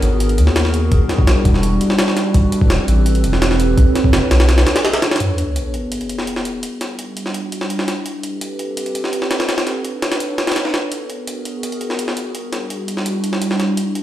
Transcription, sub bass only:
0, 0, Header, 1, 2, 480
1, 0, Start_track
1, 0, Tempo, 357143
1, 1232, Time_signature, 4, 2, 24, 8
1, 18855, End_track
2, 0, Start_track
2, 0, Title_t, "Sub bass"
2, 0, Program_c, 0, 38
2, 31, Note_on_c, 0, 32, 83
2, 512, Note_on_c, 0, 39, 94
2, 532, Note_off_c, 0, 32, 0
2, 1213, Note_off_c, 0, 39, 0
2, 1234, Note_on_c, 0, 28, 103
2, 1342, Note_off_c, 0, 28, 0
2, 1713, Note_on_c, 0, 35, 96
2, 1822, Note_off_c, 0, 35, 0
2, 1953, Note_on_c, 0, 28, 82
2, 2413, Note_off_c, 0, 28, 0
2, 3152, Note_on_c, 0, 33, 101
2, 3261, Note_off_c, 0, 33, 0
2, 3636, Note_on_c, 0, 28, 95
2, 3743, Note_off_c, 0, 28, 0
2, 3875, Note_on_c, 0, 33, 84
2, 4354, Note_on_c, 0, 28, 94
2, 4374, Note_off_c, 0, 33, 0
2, 5054, Note_off_c, 0, 28, 0
2, 5073, Note_on_c, 0, 35, 102
2, 5182, Note_off_c, 0, 35, 0
2, 5553, Note_on_c, 0, 30, 100
2, 5662, Note_off_c, 0, 30, 0
2, 5793, Note_on_c, 0, 35, 82
2, 6253, Note_off_c, 0, 35, 0
2, 18855, End_track
0, 0, End_of_file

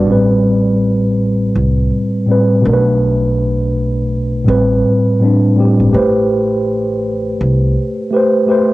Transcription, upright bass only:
0, 0, Header, 1, 2, 480
1, 0, Start_track
1, 0, Key_signature, 0, "minor"
1, 0, Tempo, 731707
1, 57, Time_signature, 4, 2, 24, 8
1, 5730, End_track
2, 0, Start_track
2, 0, Title_t, "Upright bass"
2, 0, Program_c, 0, 32
2, 61, Note_on_c, 0, 33, 93
2, 993, Note_off_c, 0, 33, 0
2, 1019, Note_on_c, 0, 36, 85
2, 1240, Note_off_c, 0, 36, 0
2, 1742, Note_on_c, 0, 35, 93
2, 2913, Note_off_c, 0, 35, 0
2, 2938, Note_on_c, 0, 33, 99
2, 3160, Note_off_c, 0, 33, 0
2, 3802, Note_on_c, 0, 31, 75
2, 3890, Note_off_c, 0, 31, 0
2, 3897, Note_on_c, 0, 33, 91
2, 4831, Note_off_c, 0, 33, 0
2, 4860, Note_on_c, 0, 36, 99
2, 5080, Note_off_c, 0, 36, 0
2, 5730, End_track
0, 0, End_of_file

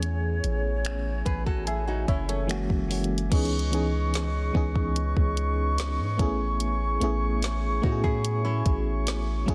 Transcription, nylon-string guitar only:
0, 0, Header, 1, 2, 480
1, 0, Start_track
1, 0, Tempo, 821918
1, 16, Time_signature, 4, 2, 24, 8
1, 5575, End_track
2, 0, Start_track
2, 0, Title_t, "Nylon-string guitar"
2, 0, Program_c, 0, 24
2, 733, Note_on_c, 0, 71, 76
2, 736, Note_on_c, 0, 68, 62
2, 848, Note_off_c, 0, 71, 0
2, 850, Note_off_c, 0, 68, 0
2, 855, Note_on_c, 0, 69, 81
2, 858, Note_on_c, 0, 66, 72
2, 969, Note_off_c, 0, 69, 0
2, 971, Note_off_c, 0, 66, 0
2, 973, Note_on_c, 0, 68, 87
2, 977, Note_on_c, 0, 64, 72
2, 1089, Note_off_c, 0, 68, 0
2, 1091, Note_off_c, 0, 64, 0
2, 1095, Note_on_c, 0, 66, 81
2, 1099, Note_on_c, 0, 63, 73
2, 1210, Note_off_c, 0, 66, 0
2, 1212, Note_off_c, 0, 63, 0
2, 1215, Note_on_c, 0, 64, 86
2, 1219, Note_on_c, 0, 61, 72
2, 1328, Note_off_c, 0, 61, 0
2, 1330, Note_off_c, 0, 64, 0
2, 1335, Note_on_c, 0, 61, 78
2, 1338, Note_on_c, 0, 57, 63
2, 1563, Note_off_c, 0, 61, 0
2, 1565, Note_off_c, 0, 57, 0
2, 4574, Note_on_c, 0, 66, 81
2, 4577, Note_on_c, 0, 63, 67
2, 4689, Note_off_c, 0, 66, 0
2, 4691, Note_off_c, 0, 63, 0
2, 4693, Note_on_c, 0, 68, 82
2, 4696, Note_on_c, 0, 64, 72
2, 4923, Note_off_c, 0, 68, 0
2, 4924, Note_off_c, 0, 64, 0
2, 4933, Note_on_c, 0, 64, 76
2, 4936, Note_on_c, 0, 61, 66
2, 5511, Note_off_c, 0, 64, 0
2, 5513, Note_off_c, 0, 61, 0
2, 5575, End_track
0, 0, End_of_file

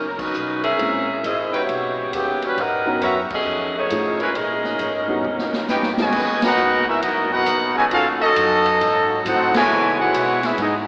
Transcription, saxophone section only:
0, 0, Header, 1, 2, 480
1, 0, Start_track
1, 0, Key_signature, 5, "minor"
1, 0, Tempo, 445104
1, 848, Time_signature, 4, 2, 24, 8
1, 11725, End_track
2, 0, Start_track
2, 0, Title_t, "Saxophone section"
2, 0, Program_c, 0, 65
2, 94, Note_on_c, 0, 70, 61
2, 198, Note_off_c, 0, 70, 0
2, 199, Note_on_c, 0, 54, 68
2, 203, Note_on_c, 0, 63, 78
2, 207, Note_on_c, 0, 61, 81
2, 210, Note_on_c, 0, 71, 90
2, 669, Note_off_c, 0, 61, 0
2, 682, Note_off_c, 0, 54, 0
2, 682, Note_on_c, 0, 61, 87
2, 684, Note_off_c, 0, 63, 0
2, 685, Note_on_c, 0, 68, 85
2, 686, Note_on_c, 0, 70, 86
2, 688, Note_off_c, 0, 71, 0
2, 688, Note_on_c, 0, 76, 110
2, 1285, Note_off_c, 0, 61, 0
2, 1287, Note_off_c, 0, 68, 0
2, 1287, Note_off_c, 0, 70, 0
2, 1288, Note_off_c, 0, 76, 0
2, 1343, Note_on_c, 0, 60, 74
2, 1347, Note_on_c, 0, 75, 96
2, 1349, Note_on_c, 0, 68, 77
2, 1353, Note_on_c, 0, 64, 87
2, 1631, Note_off_c, 0, 60, 0
2, 1634, Note_off_c, 0, 75, 0
2, 1635, Note_off_c, 0, 68, 0
2, 1637, Note_off_c, 0, 64, 0
2, 1664, Note_on_c, 0, 66, 83
2, 1671, Note_on_c, 0, 59, 84
2, 1674, Note_on_c, 0, 67, 80
2, 1675, Note_on_c, 0, 73, 97
2, 2301, Note_off_c, 0, 66, 0
2, 2301, Note_off_c, 0, 67, 0
2, 2304, Note_off_c, 0, 59, 0
2, 2306, Note_off_c, 0, 73, 0
2, 2314, Note_on_c, 0, 67, 91
2, 2315, Note_on_c, 0, 49, 75
2, 2321, Note_on_c, 0, 54, 76
2, 2324, Note_on_c, 0, 59, 76
2, 2599, Note_off_c, 0, 49, 0
2, 2599, Note_off_c, 0, 67, 0
2, 2603, Note_off_c, 0, 54, 0
2, 2604, Note_off_c, 0, 59, 0
2, 2640, Note_on_c, 0, 55, 87
2, 2643, Note_on_c, 0, 66, 86
2, 2644, Note_on_c, 0, 61, 88
2, 2645, Note_on_c, 0, 71, 90
2, 2787, Note_off_c, 0, 71, 0
2, 2789, Note_off_c, 0, 55, 0
2, 2790, Note_off_c, 0, 66, 0
2, 2791, Note_off_c, 0, 61, 0
2, 2799, Note_on_c, 0, 78, 104
2, 2800, Note_on_c, 0, 71, 86
2, 2801, Note_on_c, 0, 63, 99
2, 2804, Note_on_c, 0, 70, 92
2, 3263, Note_off_c, 0, 70, 0
2, 3267, Note_off_c, 0, 78, 0
2, 3268, Note_off_c, 0, 71, 0
2, 3269, Note_off_c, 0, 63, 0
2, 3271, Note_on_c, 0, 61, 91
2, 3276, Note_on_c, 0, 70, 79
2, 3277, Note_on_c, 0, 66, 83
2, 3277, Note_on_c, 0, 76, 96
2, 3410, Note_off_c, 0, 61, 0
2, 3414, Note_off_c, 0, 70, 0
2, 3415, Note_off_c, 0, 66, 0
2, 3415, Note_off_c, 0, 76, 0
2, 3597, Note_on_c, 0, 61, 80
2, 3598, Note_on_c, 0, 69, 83
2, 3603, Note_on_c, 0, 75, 102
2, 3606, Note_on_c, 0, 68, 88
2, 4033, Note_off_c, 0, 61, 0
2, 4033, Note_off_c, 0, 69, 0
2, 4036, Note_off_c, 0, 75, 0
2, 4037, Note_off_c, 0, 68, 0
2, 4069, Note_on_c, 0, 57, 79
2, 4075, Note_on_c, 0, 63, 73
2, 4076, Note_on_c, 0, 73, 99
2, 4083, Note_on_c, 0, 68, 80
2, 4509, Note_off_c, 0, 57, 0
2, 4512, Note_off_c, 0, 63, 0
2, 4512, Note_off_c, 0, 73, 0
2, 4516, Note_off_c, 0, 68, 0
2, 4546, Note_on_c, 0, 71, 91
2, 4547, Note_on_c, 0, 56, 80
2, 4547, Note_on_c, 0, 61, 70
2, 4549, Note_on_c, 0, 65, 80
2, 4691, Note_off_c, 0, 61, 0
2, 4693, Note_off_c, 0, 56, 0
2, 4693, Note_off_c, 0, 71, 0
2, 4694, Note_off_c, 0, 65, 0
2, 4694, Note_on_c, 0, 70, 78
2, 4694, Note_on_c, 0, 75, 95
2, 4704, Note_on_c, 0, 61, 82
2, 4704, Note_on_c, 0, 68, 81
2, 5657, Note_off_c, 0, 70, 0
2, 5662, Note_off_c, 0, 68, 0
2, 6454, Note_off_c, 0, 75, 0
2, 6458, Note_off_c, 0, 61, 0
2, 11725, End_track
0, 0, End_of_file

